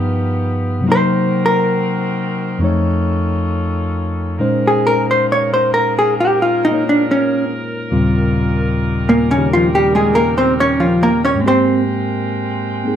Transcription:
0.00 0.83 G2 medium
0.00 0.80 D#3 medium
0.00 0.84 F3 medium
0.00 0.83 B3 medium
0.00 0.84 B3 soft
0.00 0.85 D#4 medium
0.00 0.83 F4 medium
0.00 0.83 G4 medium
0.00 0.22 B4 medium
0.00 0.86 B4 medium
0.81 2.59 C3 medium
0.81 2.60 F#3 medium
0.86 4.35 D#3 medium
0.86 2.61 A#3 medium
0.86 2.60 C4 medium
0.86 2.61 D#4 medium
0.86 2.60 F#4 medium
0.86 2.60 A#4 medium
0.92 1.43 C5 medium
0.92 2.64 C5 medium
1.46 2.77 A#4 medium
2.59 4.37 F2 medium
2.59 4.38 F3 medium
2.59 4.38 A3 soft
2.59 4.36 C#4 medium
2.59 4.39 D#4 medium
2.59 4.37 F4 medium
2.59 4.37 A4 medium
2.64 4.40 C#5 medium
4.37 7.91 A#2 soft
4.37 7.73 D#3 medium
4.37 7.92 G#3 soft
4.37 7.73 A#3 medium
4.37 6.71 D#4 soft
4.37 7.73 G#4 medium
4.37 11.36 A#4 medium
4.41 7.92 C#4 soft
4.41 7.92 C5 medium
4.67 4.95 G#4 medium
4.87 5.06 A#4 medium
5.11 5.25 C5 medium
5.32 5.53 C#5 medium
5.54 5.73 C5 medium
5.74 5.93 A#4 medium
5.99 6.13 G#4 medium
6.20 6.42 G4 medium
6.42 6.71 F4 medium
6.65 6.83 D#4 medium
6.71 7.90 A#3 soft
6.71 7.90 D#4 soft
6.71 7.91 F4 soft
6.71 7.91 C#5 soft
6.89 7.03 D4 medium
7.11 7.44 C#4 medium
7.90 11.41 D#2 soft
7.90 11.41 A#2 soft
7.90 11.41 C#3 soft
7.90 11.37 D#3 medium
7.90 11.37 G3 medium
7.90 11.41 G3 soft
7.90 11.41 C4 soft
7.90 9.64 F4 medium
7.90 11.41 F4 medium
9.09 9.30 A#2 medium
9.09 9.31 A#3 medium
9.31 9.48 C#3 medium
9.31 9.48 C#4 medium
9.36 11.40 D#3 soft
9.36 11.40 A#3 soft
9.36 11.41 C#4 soft
9.36 11.41 D#4 soft
9.36 11.41 G4 soft
9.53 9.67 F3 medium
9.53 9.67 F4 medium
9.65 12.96 G5 medium
9.75 9.99 G3 medium
9.75 9.95 G4 medium
9.95 10.23 G#3 medium
9.95 10.23 G#4 medium
10.15 10.34 A#3 medium
10.15 10.33 A#4 medium
10.38 10.53 C4 medium
10.38 10.52 C5 medium
10.60 10.85 C#4 medium
10.60 10.85 C#5 medium
10.80 11.09 F3 soft
10.80 11.09 F4 soft
11.03 11.21 A#3 medium
11.03 11.21 A#4 medium
11.25 11.39 C#4 medium
11.25 11.40 C#5 medium
11.35 12.96 G#2 soft
11.35 12.96 G#3 soft
11.35 12.96 G#3 medium
11.35 12.96 C4 medium
11.40 12.83 A#3 soft
11.40 12.84 C4 soft
11.40 12.96 A#4 medium
11.46 11.80 C4 medium
11.46 12.96 G4 medium
11.46 11.80 C5 medium
12.84 12.96 A#3 soft
12.84 12.96 C4 soft
12.84 12.96 D#4 soft
12.84 12.96 G#4 soft

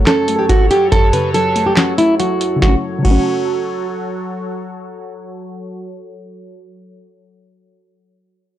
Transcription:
0.00 0.28 F#2 loud
0.00 2.59 F#2 medium
0.00 0.49 C#3 medium
0.00 0.48 F#3 loud
0.00 2.59 F#3 medium
0.00 0.27 A3 medium
0.00 2.59 A4 medium
0.00 2.59 C#5 medium
0.07 1.13 C#4 loud
0.07 0.37 A4 medium
0.07 snare loud
0.07 clap medium
0.07 closed hi-hat medium
0.28 1.35 A3 medium
0.28 closed hi-hat medium
0.39 0.47 G4 medium
0.49 1.34 F#3 medium
0.49 0.65 F#4 medium
0.49 kick loud
0.49 closed hi-hat medium
0.71 0.87 G4 medium
0.71 closed hi-hat medium
0.92 1.98 F#2 loud
0.92 1.08 A4 loud
0.92 kick loud
0.92 closed hi-hat medium
1.13 2.20 C#3 medium
1.13 1.29 B4 medium
1.13 closed hi-hat medium
1.34 2.18 F#3 medium
1.34 1.64 A4 medium
1.34 closed hi-hat medium
1.56 1.97 A3 medium
1.56 closed hi-hat medium
1.66 1.74 G4 medium
1.77 2.62 C#4 medium
1.77 1.93 F#4 medium
1.77 snare loud
1.77 clap medium
1.77 closed hi-hat medium
1.98 2.62 A3 medium
1.98 2.14 E4 medium
1.98 closed hi-hat medium
2.19 2.59 F#3 medium
2.19 2.60 F#4 medium
2.19 closed hi-hat medium
2.41 closed hi-hat medium
2.56 2.71 C#3 medium
2.56 2.73 F#3 medium
2.62 5.88 F#3 medium
2.62 2.75 A3 medium
2.62 2.74 F#4 medium
2.62 5.88 F#4 medium
2.62 5.88 A4 medium
2.62 5.88 C#5 medium
2.62 kick loud
2.62 snare medium
2.68 2.77 C#4 medium
2.99 6.25 C#3 medium
2.99 6.29 F#3 medium
3.05 6.33 A3 medium
3.05 3.86 F#4 medium
3.05 kick loud
3.05 crash medium
3.11 6.37 C#4 loud

